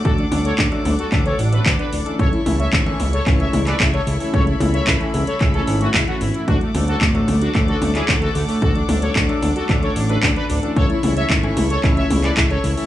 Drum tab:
HH |xxoxxxoxxxoxxxox|xxoxxxoxxxoxxxoo|xxoxxxoxxxoxoxox|xxoxxxoxxxoxxxoo|
CP |----x---x---x---|----x---x--xx---|----x---x---x---|----x---x--xx---|
T1 |--o---o---------|o-o---o---o-----|o-o---o---------|o-o---o---o-----|
BD |o---o---o---o---|o---o---o---o---|o---o---o---o---|o---o---o---o---|

HH |xxoxxxoxxxoxxxox|xxoxxxoxxxoxxxoo|
CP |----x---x---x---|----x---x--xx---|
T1 |--o---o---------|o-o---o---o-----|
BD |o---o---o---o---|o---o---o---o---|